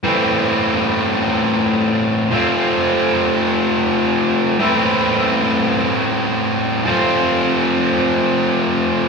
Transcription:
\new Staff \with { instrumentName = "Distorted electric guitar" } { \time 6/8 \key a \minor \tempo 4. = 53 <a, e a c' e'>2. | <f a c' f'>2. | <a, e a c' e'>2. | <f a c' f'>2. | }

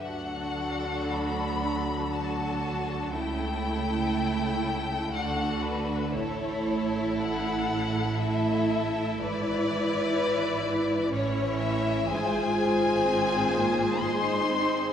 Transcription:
<<
  \new Staff \with { instrumentName = "Violin section" } { \time 3/4 \key d \major \tempo 4 = 60 fis''4 b''4 a''4 | g''2 fis''8 b'8 | cis''4 fis''4 e''4 | d''2 cis''8 e''8 |
\key f \dorian aes''2 c'''4 | }
  \new Staff \with { instrumentName = "Violin section" } { \time 3/4 \key d \major << { a'2 a'4 | a'2 a'4 | a'2 a'4 | b'2 cis''4 |
\key f \dorian c''8 c''4. c''4 | } \\ { fis'2 fis'4 | e'2 fis'4 | e'2 e'4 | e'2 e'4 |
aes'2. | } >> }
  \new Staff \with { instrumentName = "Viola section" } { \time 3/4 \key d \major << { d'2 d'4 | e'2 d'4 | e'2 e'4 | e'2 cis'4 |
\key f \dorian f'2 ees'4 | } \\ { fis2 fis4 | a2 a4 | a2 a4 | e2 e4 |
aes4 c'8 bes8 aes8 c'8 | } >> }
  \new Staff \with { instrumentName = "Cello section" } { \clef bass \time 3/4 \key d \major d2. | cis2 d4 | a,2. | gis,2 a,4 |
\key f \dorian aes,2. | }
  \new Staff \with { instrumentName = "Double bass section" } { \clef bass \time 3/4 \key d \major d,2. | cis,2 d,4 | a,,2. | gis,,2 a,,4 |
\key f \dorian aes,,2. | }
>>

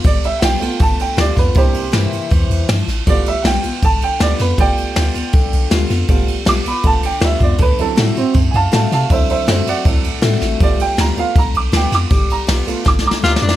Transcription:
<<
  \new Staff \with { instrumentName = "Upright piano" } { \time 4/4 \key g \mixolydian \tempo 4 = 159 d''8 e''8 <fis'' g''>4 a''8 g''8 d''8 b'8 | <g' c''>2. r4 | d''8 e''8 <fis'' g''>4 a''8 g''8 d''8 b'8 | <d'' g''>2. r4 |
r4 d'''8 b''8 a''8 g''8 e''8 d''8 | b'8 a'8 e'8 c'8 r8 <f'' aes'' a''>8 <f'' a''>8 <f'' a''>8 | <c'' e''>8 <c'' e''>8 <c'' e''>8 <d'' fis''>2 r8 | d''8 g''8 bes''8 f''8 bes''8 d'''8 g''8 d'''8 |
r8 bes''8 r4 d'''8 <bes'' d'''>4. | }
  \new Staff \with { instrumentName = "Upright piano" } { \time 4/4 \key g \mixolydian r4. <a b f'>2~ <a b f'>8 | <bes d' e'>8 r2. r8 | <a b f'>8 r2. r8 | <a b f'>1 |
<a b f'>8 r4. <a b f'>8 r4. | r8 <fis c' e'>8 r2. | <fis c' e'>2 <fis c' e'>8 r4. | <a b f'>4. <a b f'>8 r2 |
r4. <a b f'>4. r4 | }
  \new Staff \with { instrumentName = "Tenor saxophone" } { \time 4/4 \key g \mixolydian r1 | r1 | r1 | r1 |
r1 | r1 | r1 | r1 |
r2. f'8 d'8 | }
  \new Staff \with { instrumentName = "Steel-string acoustic guitar" } { \time 4/4 \key g \mixolydian << { r4 <g b f'>8 <b f'>8 r4 <g b f'>8 <b f'>8 | r4 <e bes c' e'>4 r2 | r4 <g b f'>8 <b f'>8 r4 <g b f'>8 <b f'>8 | r4 <g b f'>8 <b f'>8 r4 <g b f'>8 <b f'>8 |
r4 <g b f'>8 <b f'>8 r4 <g b f'>8 <b f'>8 | r4 <d a c' fis'>8 <c' fis'>8 r4 <d a c' fis'>8 <c' fis'>8 | r4 <d a c' fis'>8 <c' fis'>8 r4 <d a c' fis'>4 | r4 <g b f'>8 <b f'>8 r4 <g b f'>8 <b f'>8 |
r4 <g b f'>8 <b f'>8 r4 <g b f'>8 <b f'>8 | } \\ { g2 d2 | c2 e4 f4 | g2 d2 | g2 d2 |
g2 d2 | d2 a,2 | d2 a,2 | g2 d2 |
g2 d2 | } >> }
  \new Staff \with { instrumentName = "Sub bass" } { \clef bass \time 4/4 \key g \mixolydian g,,8 g,,8 b,,8 b,,8 g,,8 g,,8 d,8 f,8 | c,8 c,8 g,8 g,8 e,8 e,8 g,8 a,,8 | g,,8 g,,8 b,,8 b,,8 g,,8 g,,8 d,8 f,8 | g,,8 g,,8 d,8 d,8 b,,8 b,,8 d,8 f,8 |
g,,8 g,,8 b,,8 b,,8 g,,8 g,,8 d,8 f,8 | d,8 d,8 a,8 a,8 fis,8 fis,8 a,8 c8 | d,8 d,8 fis,8 fis,8 d,8 d,8 a,8 a,,8 | g,,8 g,,8 d,8 d,8 b,,8 b,,8 d,8 f,8 |
g,,8 g,,8 b,,8 b,,8 g,,8 g,,8 d,8 f,8 | }
  \new DrumStaff \with { instrumentName = "Drums" } \drummode { \time 4/4 <bd cymr>8 cymr8 <cymr sn>8 cymr8 <bd cymr>8 cymr8 <cymr sn>8 <bd cymr sn>8 | <bd cymr>8 cymr8 <cymr sn>8 cymr8 <bd cymr>8 cymr8 <cymr sn>8 <cymr sn>8 | <bd cymr>8 cymr8 <cymr sn>8 cymr8 <bd cymr>8 cymr8 <cymr sn>8 <cymr sn>8 | <bd cymr>8 cymr8 <cymr sn>8 cymr8 <bd cymr>8 cymr8 <cymr sn>8 <cymr sn>8 |
<bd cymr>8 cymr8 <cymr sn>8 cymr8 <bd cymr>8 cymr8 <cymr sn>8 <bd cymr>8 | <bd cymr>8 cymr8 <cymr sn>8 cymr8 <bd cymr>8 cymr8 <cymr sn>8 <cymr sn>8 | <bd cymr>8 cymr8 <cymr sn>8 cymr8 <bd cymr>8 cymr8 <cymr sn>8 <cymr sn>8 | <bd cymr>8 cymr8 <cymr sn>8 cymr8 <bd cymr>8 cymr8 <cymr sn>8 <cymr sn>8 |
<bd cymr>8 cymr8 <cymr sn>8 cymr8 \tuplet 3/2 { <bd sn>8 sn8 sn8 sn8 sn8 sn8 } | }
>>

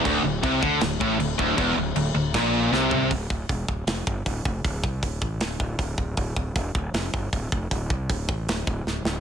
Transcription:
<<
  \new Staff \with { instrumentName = "Distorted electric guitar" } { \clef bass \time 4/4 \key c \mixolydian \tempo 4 = 157 d,8 d,8 c8 d8 d,8 a,8 d,8 d,8 | e,8 d,8 d,8 d,8 bes,4 c4 | \key d \minor r1 | r1 |
r1 | r1 | }
  \new Staff \with { instrumentName = "Distorted electric guitar" } { \clef bass \time 4/4 \key c \mixolydian d,8 d,8 c8 d8 d,8 a,8 d,8 d,8 | e,8 d,8 d,8 d,8 bes,4 c4 | \key d \minor r1 | r1 |
r1 | r1 | }
  \new Staff \with { instrumentName = "Fingered electric bass" } { \clef bass \time 4/4 \key c \mixolydian d,,8 d,,8 c,8 d,8 d,,8 a,,8 d,,8 d,,8 | e,,8 d,,8 d,,8 d,,8 bes,,4 c,4 | \key d \minor d,,8 d,,8 e,,8 d,,8 f,,8 g,,8 d,,8 f,,8 | d,,8 c,8 d,,8 a,,8 d,,8 d,,8 d,,8 d,,8 |
d,,8 d,,8 e,,8 d,,8 f,,8 g,,8 d,,8 f,,8 | d,,8 c,8 d,,8 a,,8 d,,8 d,,8 d,,8 d,,8 | }
  \new DrumStaff \with { instrumentName = "Drums" } \drummode { \time 4/4 <cymc bd>4 <cymc bd>8 bd8 <cymc sn>8 bd8 cymc8 bd8 | <cymc bd>4 cymc4 <cymc bd sn>4 sn8 tomfh8 | <hho bd>8 bd8 <hho bd>8 bd8 <hho sn>8 bd8 <hho bd>8 bd8 | <hho bd>8 bd8 <hho bd>8 bd8 <hho sn>8 bd8 <hho bd>8 bd8 |
<hho bd>8 bd8 <hho bd>8 bd8 <hho sn>8 bd8 <hho bd>8 bd8 | <hho bd>8 bd8 <hho bd>8 bd8 <hho sn>8 bd8 sn8 sn8 | }
>>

